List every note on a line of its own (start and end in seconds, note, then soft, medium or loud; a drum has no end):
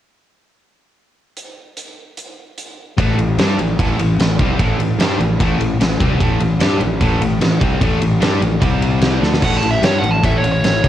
1.37 closed hi-hat medium
1.77 closed hi-hat medium
2.17 closed hi-hat medium
2.58 closed hi-hat medium
2.97 3.17 A1 loud
2.97 3.17 A2 medium
2.97 3.17 E3 loud
2.97 3.18 A3 loud
2.97 kick medium
2.97 ride medium
3.18 3.37 A1 medium
3.18 3.34 A2 medium
3.18 3.35 E3 medium
3.18 ride medium
3.38 3.57 G2 medium
3.38 3.58 G3 medium
3.38 3.58 D4 medium
3.38 3.59 G4 medium
3.38 snare loud
3.38 ride loud
3.58 3.78 A1 medium
3.58 3.74 A2 medium
3.58 3.75 E3 medium
3.58 ride medium
3.79 3.98 A1 medium
3.79 3.98 A2 medium
3.79 3.98 E3 loud
3.79 3.99 A3 medium
3.79 kick medium
3.79 ride medium
3.99 4.18 A1 medium
3.99 4.15 A2 medium
3.99 4.15 E3 medium
3.99 ride medium
4.19 4.38 A1 medium
4.19 4.35 A2 medium
4.19 4.35 E3 medium
4.19 snare loud
4.19 ride medium
4.39 4.58 C2 medium
4.39 4.59 C3 medium
4.39 4.59 G3 medium
4.39 4.60 C4 loud
4.39 kick loud
4.39 ride medium
4.59 4.77 A1 medium
4.59 4.78 A2 medium
4.59 4.79 E3 medium
4.59 4.80 A3 loud
4.59 kick medium
4.59 ride medium
4.78 4.97 A1 medium
4.78 4.96 A2 medium
4.78 4.96 E3 medium
4.78 ride medium
4.98 5.18 G2 medium
4.98 5.19 G3 medium
4.98 5.20 D4 medium
4.98 5.20 G4 loud
4.98 snare loud
4.98 ride medium
5.19 5.38 A1 medium
5.19 5.36 A2 medium
5.19 5.36 E3 medium
5.19 ride medium
5.39 5.59 A1 medium
5.39 5.58 A2 medium
5.39 5.59 E3 loud
5.39 5.60 A3 loud
5.39 kick loud
5.39 ride medium
5.59 5.79 A1 medium
5.59 5.76 A2 medium
5.59 5.76 E3 medium
5.59 ride medium
5.79 5.98 A1 medium
5.79 5.96 A2 medium
5.79 5.96 E3 medium
5.79 snare medium
5.79 ride medium
5.99 6.19 C2 medium
5.99 6.19 C3 medium
5.99 6.19 G3 medium
5.99 6.20 C4 medium
5.99 kick loud
5.99 ride medium
6.19 6.39 A1 loud
6.19 6.38 A2 medium
6.19 6.39 E3 medium
6.19 6.40 A3 loud
6.19 kick medium
6.19 ride medium
6.40 6.59 A1 medium
6.40 6.56 A2 medium
6.40 6.56 E3 medium
6.40 ride medium
6.60 6.80 G2 loud
6.60 6.80 G3 medium
6.60 6.80 D4 medium
6.60 6.81 G4 loud
6.60 snare loud
6.60 ride medium
6.80 6.99 A1 medium
6.80 6.97 A2 medium
6.80 6.97 E3 medium
6.80 ride medium
7.01 7.20 A1 medium
7.01 7.20 A2 medium
7.01 7.21 E3 medium
7.01 7.21 A3 medium
7.01 kick medium
7.01 ride medium
7.21 7.40 A1 medium
7.21 7.37 A2 medium
7.21 7.38 E3 medium
7.21 ride medium
7.41 7.60 A1 medium
7.41 7.57 A2 medium
7.41 7.58 E3 medium
7.41 snare medium
7.41 ride medium
7.61 7.80 C2 medium
7.61 7.81 C3 medium
7.61 7.81 G3 medium
7.61 7.81 C4 loud
7.61 kick loud
7.61 ride medium
7.81 8.00 A1 medium
7.81 8.00 A2 loud
7.81 8.00 E3 medium
7.81 8.02 A3 medium
7.81 kick loud
7.81 ride medium
8.01 8.20 A1 medium
8.01 8.17 A2 medium
8.01 8.18 E3 medium
8.01 ride medium
8.21 8.41 G2 medium
8.21 8.41 G3 medium
8.21 8.41 D4 medium
8.21 8.41 G4 medium
8.21 snare loud
8.21 ride loud
8.41 8.61 A1 medium
8.41 8.58 A2 medium
8.41 8.58 E3 medium
8.41 ride medium
8.61 9.19 C2 loud
8.61 9.21 C3 medium
8.61 9.22 G3 medium
8.61 9.22 C4 medium
8.61 kick loud
8.61 ride medium
8.82 ride medium
9.02 snare medium
9.02 ride medium
9.21 9.41 D2 medium
9.21 9.41 D3 medium
9.21 9.41 A3 medium
9.21 9.42 D4 loud
9.21 snare medium
9.34 snare medium
9.42 9.61 A1 medium
9.42 9.61 A2 medium
9.42 9.62 E3 medium
9.42 9.62 A3 loud
9.42 9.57 F#5 medium
9.42 kick medium
9.42 crash loud
9.57 9.70 A5 medium
9.62 9.82 A1 medium
9.62 9.79 A2 medium
9.62 9.79 E3 medium
9.62 ride medium
9.71 9.83 E5 medium
9.81 10.02 G2 medium
9.81 10.02 G3 medium
9.81 10.02 D4 medium
9.81 10.03 G4 medium
9.81 9.97 C#5 medium
9.81 snare loud
9.81 ride medium
9.99 10.22 A1 medium
9.99 10.19 A2 medium
9.99 10.11 F#5 medium
10.03 10.19 E3 medium
10.03 ride medium
10.11 10.23 A5 medium
10.23 10.42 A1 medium
10.23 10.42 A2 medium
10.23 10.43 E3 medium
10.23 10.44 A3 loud
10.23 10.37 E5 medium
10.23 kick loud
10.23 ride medium
10.38 10.50 C#5 medium
10.43 10.62 A1 medium
10.43 10.60 A2 medium
10.43 10.60 E3 medium
10.43 ride medium
10.52 10.88 C#5 medium
10.63 10.82 A1 medium
10.63 10.80 A2 medium
10.63 10.80 E3 medium
10.63 snare medium
10.63 ride medium
10.84 10.88 C2 medium
10.84 10.88 C3 medium
10.84 10.88 G3 medium
10.84 kick loud
10.84 ride medium